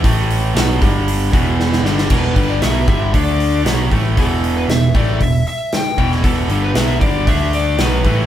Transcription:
0.04 picked electric bass A1, overdriven electric guitar A2 E3 A3, kick, open hi-hat
0.30 open hi-hat
0.55 picked electric bass B1, overdriven electric guitar B2 F#3 B3, snare, open hi-hat
0.81 picked electric bass G1, overdriven electric guitar G2 D3 G3, kick, open hi-hat
1.08 open hi-hat
1.33 picked electric bass E1, overdriven electric guitar E2 B2 E3, kick, open hi-hat
1.60 snare
1.73 snare
1.84 picked electric bass G1, overdriven electric guitar G2 D3 G3, snare
1.98 snare
2.10 picked electric bass E1, overdriven electric guitar E2 B2 E3, lead electric guitar B4, kick, crash
2.36 picked electric bass G1, overdriven electric guitar G2 D3 G3, kick, open hi-hat
2.48 lead electric guitar D5
2.62 picked electric bass B1, overdriven electric guitar B2 F#3 B3, lead electric guitar E5, snare, open hi-hat
2.88 picked electric bass G1, overdriven electric guitar G2 D3 G3, lead electric guitar E5, kick, open hi-hat
3.13 picked electric bass D2, overdriven electric guitar D3 A3 D4, lead electric guitar D5, kick, open hi-hat
3.40 open hi-hat
3.65 picked electric bass B1, overdriven electric guitar B2 F#3 B3, lead electric guitar C#5, snare, open hi-hat
3.91 picked electric bass A1, overdriven electric guitar A2 E3 A3, kick, open hi-hat
4.17 picked electric bass E1, overdriven electric guitar E2 B2 E3, lead electric guitar A4, kick, open hi-hat
4.44 open hi-hat
4.57 lead electric guitar B4
4.69 picked electric bass E1, overdriven electric guitar E2 B2, lead electric guitar E5, snare, open hi-hat
4.94 picked electric bass A1, overdriven electric guitar A2 E3 A3, lead electric guitar D5, kick, open hi-hat
5.19 picked electric bass E1, overdriven electric guitar E2 B2, lead electric guitar E5, kick, open hi-hat
5.47 lead electric guitar E5, open hi-hat
5.72 lead electric guitar G5, snare, open hi-hat
5.98 picked electric bass E1, overdriven electric guitar E2 B2 E3, kick, open hi-hat
6.12 snare
6.24 picked electric bass E1, overdriven electric guitar E2 B2 E3, lead electric guitar A4, kick, open hi-hat
6.49 picked electric bass G1, overdriven electric guitar G2 D3 G3, open hi-hat
6.64 lead electric guitar B4
6.75 picked electric bass B1, overdriven electric guitar B2 F#3 B3, lead electric guitar E5, snare, open hi-hat
7.01 picked electric bass G1, overdriven electric guitar G2 D3 G3, lead electric guitar D5, kick, open hi-hat
7.27 picked electric bass D2, overdriven electric guitar D3 A3 D4, lead electric guitar E5, kick, open hi-hat
7.53 lead electric guitar D5, open hi-hat
7.78 picked electric bass B1, overdriven electric guitar B2 F#3 B3, lead electric guitar B4, snare, open hi-hat
8.04 picked electric bass A1, overdriven electric guitar A2 E3 A3, kick, open hi-hat

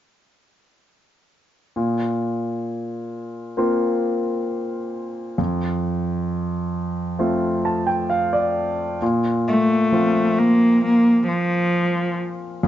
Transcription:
1.76 grand piano A#2
3.57 grand piano A#3 C4 F4
5.38 grand piano F2
7.19 grand piano A3 C4 F4
7.65 grand piano A5
7.87 grand piano G5
8.10 grand piano F5
8.33 grand piano D5
9.02 grand piano A#2
9.48 cello A3
9.92 grand piano F3 C4 F4
10.38 cello A#3
10.84 cello A#3
11.28 cello F3
12.63 grand piano F2

